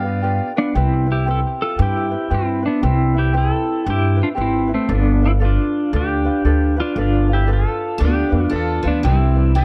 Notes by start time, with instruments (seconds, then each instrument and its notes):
Already playing: upright bass G2, steel-string acoustic guitar B3, pedal steel guitar D5 F5
0.04 ukulele D4 F4 B4
0.22 ukulele D4 F4 G4 B4
0.56 pedal steel guitar B3 D4, ukulele D4 F4 B4
0.75 upright bass C2, ukulele C4 E4 G4 B4, pedal steel guitar C4 E4
1.06 ukulele C4 E4 B4
1.12 pedal steel guitar E4 G4
1.26 ukulele C4 E4 G4 B4
1.31 pedal steel guitar E4 A4
1.62 pedal steel guitar F4 A4
1.78 upright bass G2, ukulele C4 E4 G4 B4
1.82 pedal steel guitar E4 G4
2.11 ukulele C4 E4 B4
2.30 upright bass G2, ukulele C4 E4 G4 B4
2.34 pedal steel guitar C4 E4
2.62 ukulele C4 E4 B4, pedal steel guitar D4
2.67 pedal steel guitar B3
2.82 upright bass C2, ukulele C4 E4 G4 B4, pedal steel guitar E4
2.87 pedal steel guitar C4
3.14 ukulele C4 E4 B4
3.18 pedal steel guitar E4 G4
3.33 ukulele C4 E4 G4 B4
3.38 pedal steel guitar E4 A4
3.84 upright bass G2, ukulele C4 E4 G4 B4
3.90 pedal steel guitar E4 G4
4.16 ukulele C4 E4 B4
4.23 pedal steel guitar D4 F4
4.35 upright bass G#1, ukulele C4 E4 G4 B4
4.41 pedal steel guitar C4 E4
4.67 ukulele C4 E4 B4
4.74 pedal steel guitar A3 C4
4.89 upright bass G1, ukulele D4 F4 A4 B4
4.95 pedal steel guitar B3 D4
5.22 ukulele D4 F4 B4, pedal steel guitar E4
5.26 pedal steel guitar C4
5.40 ukulele D4 F4 A4 B4
5.45 pedal steel guitar D4 F4
5.93 upright bass D2, ukulele D4 F4 A4 B4, pedal steel guitar D4 G4
6.25 ukulele D4 F4 B4
6.45 upright bass D2, ukulele D4 F4 A4 B4
6.76 ukulele D4 F4 B4, pedal steel guitar F4
6.81 pedal steel guitar D4
6.96 upright bass G1, ukulele D4 F4 A4 B4
7.01 pedal steel guitar D4 F4
7.28 ukulele D4 F4 B4
7.33 pedal steel guitar E4 G4
7.47 ukulele D4 F4 A4 B4
7.53 pedal steel guitar F4 A4
7.98 upright bass D2, steel-string acoustic guitar B3, ukulele D4 F4 A4 B4
8.05 pedal steel guitar D4 G4
8.30 upright bass F2, ukulele D4 F4 B4
8.50 upright bass E2, steel-string acoustic guitar D4, ukulele D4 F4 A4 B4
8.56 pedal steel guitar F4 A4
8.83 upright bass D2, steel-string acoustic guitar F3, ukulele D4 F4 B4
8.88 pedal steel guitar B3 D4
9.03 upright bass C2, steel-string acoustic guitar G3, ukulele D4 E4 G4 B4
9.07 pedal steel guitar C4 E4
9.36 ukulele D4 E4 B4
9.55 steel-string acoustic guitar C4, ukulele D4 E4 G4 B4, pedal steel guitar E4 A4